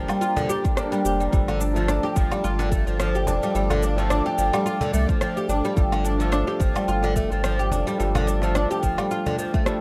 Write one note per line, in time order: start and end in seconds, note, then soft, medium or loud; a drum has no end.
0.00 0.75 G3 medium
0.00 0.76 A#3 medium
0.00 0.77 D4 medium
0.00 1.29 G4 medium
0.00 0.77 A#4 loud
0.00 1.29 C5 medium
0.00 1.29 A#5 medium
0.08 0.21 G3 loud
0.08 cajon slap medium
0.08 low woodblock medium
0.08 shaker soft
0.21 0.36 F4 medium
0.21 shaker soft
0.37 0.48 D3 loud
0.37 cajon bass medium
0.37 shaker soft
0.49 0.63 G4 loud
0.49 shaker medium
0.64 0.76 D4 medium
0.64 kick loud
0.64 shaker soft
0.75 0.88 G3 medium
0.75 0.88 A#3 medium
0.75 0.89 D4 medium
0.75 0.91 D4 medium
0.75 0.89 A#4 loud
0.75 cross-stick loud
0.75 shaker medium
0.91 1.29 G3 medium
0.91 0.99 G3 loud
0.91 1.29 A#3 medium
0.91 1.30 D4 medium
0.91 1.30 D5 medium
0.91 shaker soft
1.05 1.28 F1 medium
1.05 1.19 G4 medium
1.05 shaker medium
1.20 1.31 G3 medium
1.20 shaker soft
1.31 1.99 G1 loud
1.31 1.71 F3 medium
1.31 1.47 G3 medium
1.31 1.72 A3 medium
1.31 1.72 D4 medium
1.31 1.72 A4 loud
1.31 9.81 A4 medium
1.31 9.81 D5 medium
1.31 9.81 F5 medium
1.31 9.81 D6 medium
1.31 kick loud
1.31 shaker soft
1.48 1.59 D3 loud
1.48 low woodblock medium
1.48 shaker soft
1.60 1.75 D4 medium
1.60 shaker medium
1.73 3.51 F3 medium
1.73 1.87 F3 medium
1.73 3.51 A3 medium
1.73 3.52 D4 medium
1.73 shaker soft
1.77 3.53 A4 loud
1.88 2.03 D4 loud
1.88 cross-stick medium
1.88 shaker soft
2.03 2.15 G4 medium
2.03 cajon slap medium
2.16 2.29 G1 medium
2.16 2.30 F3 medium
2.16 kick loud
2.16 shaker medium
2.31 2.43 G3 loud
2.31 cajon slap medium
2.31 low woodblock medium
2.31 shaker soft
2.44 2.83 G1 medium
2.44 2.59 F4 medium
2.44 shaker soft
2.59 2.70 D3 loud
2.59 cajon slap medium
2.59 shaker soft
2.71 2.86 A3 medium
2.71 kick medium
2.71 shaker medium
2.87 3.28 G1 medium
2.87 2.98 F3 medium
2.87 shaker soft
3.00 3.14 F3 loud
3.00 cross-stick loud
3.00 shaker soft
3.15 3.27 G4 medium
3.15 shaker soft
3.27 3.40 F1 loud
3.27 3.41 D4 medium
3.27 cajon bass medium
3.27 cajon slap medium
3.27 shaker medium
3.43 3.54 G3 medium
3.43 shaker soft
3.54 4.21 G1 loud
3.54 3.94 F3 medium
3.54 3.70 G3 medium
3.54 3.94 A3 medium
3.54 3.95 D4 medium
3.54 3.95 A4 medium
3.54 shaker soft
3.70 3.82 D3 loud
3.70 cajon bass medium
3.70 low woodblock medium
3.70 shaker soft
3.83 3.98 D4 medium
3.83 shaker medium
3.96 5.73 F3 medium
3.96 4.09 F3 medium
3.96 5.74 A3 medium
3.96 5.74 D4 medium
3.96 5.75 A4 loud
3.96 cajon slap medium
3.96 shaker soft
4.10 4.25 D4 loud
4.10 cross-stick loud
4.10 shaker soft
4.26 4.38 G4 medium
4.26 cajon slap medium
4.38 4.51 G1 medium
4.38 4.52 F3 medium
4.38 shaker medium
4.53 4.65 G3 loud
4.53 cajon slap medium
4.53 low woodblock medium
4.53 shaker soft
4.66 4.81 F4 medium
4.66 shaker soft
4.81 4.92 D3 loud
4.81 cajon bass medium
4.81 shaker soft
4.93 5.06 C2 loud
4.93 5.08 A3 medium
4.93 shaker medium
5.09 5.20 F3 medium
5.09 kick medium
5.09 shaker soft
5.21 5.36 F3 loud
5.21 cross-stick loud
5.21 shaker soft
5.37 5.49 G4 medium
5.37 shaker soft
5.49 5.62 G1 medium
5.49 5.63 D4 medium
5.49 shaker medium
5.65 5.76 G3 medium
5.65 shaker soft
5.76 6.44 G1 loud
5.76 6.16 F3 medium
5.76 5.92 G3 medium
5.76 6.16 A3 medium
5.76 6.17 D4 medium
5.76 6.17 A4 medium
5.76 kick loud
5.76 shaker soft
5.92 6.04 D3 loud
5.92 low woodblock medium
5.92 shaker soft
6.04 6.19 D4 medium
6.04 shaker medium
6.18 7.95 F3 medium
6.18 6.31 F3 medium
6.18 7.96 A3 medium
6.18 7.96 D4 medium
6.18 7.97 A4 loud
6.18 shaker soft
6.32 6.47 D4 loud
6.32 cross-stick loud
6.32 shaker soft
6.47 6.60 G4 medium
6.47 cajon slap medium
6.60 6.73 G1 medium
6.60 6.74 F3 medium
6.60 kick medium
6.60 shaker medium
6.75 6.88 G3 loud
6.75 cajon slap medium
6.75 low woodblock medium
6.75 shaker soft
6.88 7.27 G1 medium
6.88 7.03 F4 medium
6.88 shaker soft
7.03 7.15 D3 loud
7.03 cajon slap medium
7.03 shaker soft
7.16 7.31 A3 medium
7.16 kick medium
7.16 shaker medium
7.31 7.73 G1 medium
7.31 7.43 F3 medium
7.31 shaker soft
7.44 7.58 F3 loud
7.44 cross-stick loud
7.44 shaker soft
7.59 7.71 G4 medium
7.59 shaker soft
7.72 7.84 F1 loud
7.72 7.86 D4 medium
7.72 cajon bass medium
7.72 cajon slap medium
7.72 shaker medium
7.87 7.98 G3 loud
7.87 shaker soft
7.98 8.66 G1 loud
7.98 8.38 F3 medium
7.98 8.14 G3 medium
7.98 8.38 A3 medium
7.98 8.39 D4 medium
7.98 8.39 A4 loud
7.98 shaker soft
8.15 8.26 D3 loud
8.15 cajon bass medium
8.15 low woodblock medium
8.15 shaker soft
8.27 8.42 D4 medium
8.27 shaker medium
8.40 9.62 F3 medium
8.40 8.54 F3 medium
8.40 9.63 A3 medium
8.40 9.64 D4 medium
8.40 9.64 A4 loud
8.40 cajon slap medium
8.40 shaker soft
8.55 8.70 D4 loud
8.55 cross-stick loud
8.55 shaker soft
8.71 8.82 G4 medium
8.71 cajon slap medium
8.71 shaker soft
8.83 8.96 G1 medium
8.83 8.97 F3 medium
8.83 kick medium
8.83 shaker medium
8.98 9.10 G3 loud
8.98 cajon slap medium
8.98 low woodblock medium
8.98 shaker soft
9.11 9.25 F4 medium
9.11 shaker soft
9.26 9.37 D3 loud
9.26 cajon bass medium
9.26 shaker soft
9.39 9.53 F3 medium
9.39 shaker medium
9.54 9.66 A3 medium
9.54 kick loud
9.54 shaker soft
9.65 9.77 F3 loud
9.65 9.75 G3 medium
9.65 9.78 A3 medium
9.65 9.78 D4 medium
9.65 9.78 A4 loud
9.65 cross-stick loud
9.65 shaker soft